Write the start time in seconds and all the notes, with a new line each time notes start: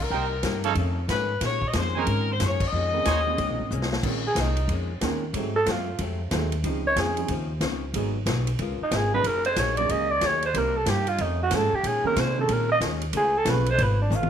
0.02 A#4
0.10 C2 C3 A#3 D#4 G4 A#4 C5 G5
0.43 G2 C3 A#3 D#4 G4, kick, snare, hi-hat pedal, ride
0.64 F3 A3 C#4 D#4 G#4 A4 C#5 F5, ride
0.75 F2 D#3 A3, kick, ride
0.79 C#4
1.08 F2 G#2 D#3 A3 C#4 B4, kick, snare, hi-hat pedal, ride
1.41 A#2 D#3 G#3 C#5, kick, snare, ride
1.45 C#4
1.62 kick
1.67 D#5
1.73 F2 A#2 D#3 G#3 C#4, kick, snare, hi-hat pedal, ride
1.78 C5
1.95 D#3 A#3 C4 C#4 D#4 G#4 A#4 C5 C#5 G#5
2.07 G#2 A#2 D#3 G#3 C#4, kick, ride
2.32 C5
2.40 F#2 A#2 D#3 G#3 C#4, kick, snare, hi-hat pedal, ride
2.44 C#5
2.60 kick, crash
2.66 D#5
2.72 F2 A#2 D#3 G#3
2.77 C#4
2.93 D#3 A#3 C4 C#4 G#4
3.05 D#2 A#2 D#3 G#3 C#4 D#4 C5 C#5 G#5, kick, snare, hi-hat pedal, ride
3.26 D#3 A#3 C4 C#4 G#4
3.38 C#2 A#2 D#3 G#3 C#4, kick, ride
3.49 A#1
3.60 G#1
3.71 C2 A#2 D#3 G#3 C#4, hi-hat pedal
3.82 snare
3.92 snare
4.03 A#1 A#2 D#3 G#3 A#3 C4 C#4 G#4, kick, crash
4.27 G#4
4.35 C2 A#2 D#3 G#3 C#4, kick, snare, hi-hat pedal, ride
4.41 D#4
4.57 ride
4.68 F2 A#2 D#3 G#3, kick, ride
4.73 C#4
5.01 D#2 A#2 D#3 G#3 A#3 C4 C#4 A#4, kick, snare, hi-hat pedal, ride
5.33 G#2 F#3 A3 C4 D#4 G#4, kick, ride
5.38 C4
5.56 A4
5.66 F#2 G#2 F#3 A3 C4, kick, snare, hi-hat pedal, ride
5.71 F4
5.98 F2 G#2 F#3 A3 C4, kick, ride
6.31 D#2 G#2 F#3 A3 C4 D#4 G#4, kick, snare, hi-hat pedal, ride
6.52 ride
6.64 C#2 C#3 F3 C4 C#4 D#4 G#4, kick, ride
6.87 C#5
6.96 F2 C#3 F3 C4 D#4 G#4, kick, snare, hi-hat pedal, ride
7.17 F3 C4 C#4 D#4 G#4, ride
7.28 D#2 C#3 F3 C4, kick, ride
7.32 D#4
7.61 C#2 C#3 F3 C4 D#4, kick, snare, hi-hat pedal, ride
7.93 G#1 G#2 F#3 G#3 B3 D#4 G#4, kick, ride
7.98 D#4
8.26 B1 G#2 F#3, kick, snare, hi-hat pedal, ride
8.30 B3 D#4
8.47 ride
8.59 C#2 C#3 B3 F4, kick, ride
8.63 A#4
8.80 D#4, muted upright bass stroke
8.91 G#1 C#3 B3 F4 A#4, kick, snare, hi-hat pedal, ride
8.96 G#4
9.13 F#3 A#3 C#4 D#4 G#4 B4
9.24 F#1 F#3 A#3 D#4 G#4 A#4, kick, ride
9.45 C5, ride
9.56 A#1 F#3 A#3 D#4 G#4 C#5, kick, snare, hi-hat pedal, ride
9.77 F#3 A#3 C#4 D#4 G#4 D5, ride
9.89 C#2 F#3 A#3 D#4 G#4 D#5, kick, ride
10.11 D5
10.21 D#2 F#3 A#3 D#4 G#4, kick, snare, hi-hat pedal, ride
10.26 C#5
10.42 C5, ride
10.54 C2 C3 G3 A#3 C4 D#4 A#4, kick, ride
10.77 A4
10.86 G2 C3 G3 A#3 D#4 G4, kick, snare, hi-hat pedal, ride
11.07 F4, ride
11.18 F2 D#3 A3 D#4, kick, ride
11.23 C#4
11.43 F#4
11.51 F2 G#2 D#3 F3 A3 C#4 D#4 G#4, kick, snare, hi-hat pedal, ride
11.55 A4
11.72 G4, muted upright bass stroke
11.83 A#2 D#3 G#3 G#4, kick, ride
11.87 C#4
12.04 D#3 A#3 C4 C#4 G#4 A#4, muted upright bass stroke
12.16 A#2 C3 D#3 G#3 C#4 C5, kick, snare, hi-hat pedal, ride
12.38 D#3 A#3 C4 C#4 G#4 A4
12.48 A#2 D#3 G#3 C#4, kick, ride
12.53 A#4
12.72 D#5
12.80 D#2 A#2 D#3 G#3 C#4, kick, snare, hi-hat pedal, ride
13.01 ride
13.13 C#2 C#3 A3 B3 F4 G#4, kick, ride
13.37 A4
13.45 B1 C#3 F3 A3 B3 C#4 F4 G#4, kick, snare, hi-hat pedal, ride
13.50 B4
13.66 C5, ride
13.78 G#1 C#3 A3 B3 F4, kick, ride
13.82 B4
14.02 D4
14.10 A1 C#3 A3 B3 F4, hi-hat pedal, high tom
14.16 F4
14.23 high tom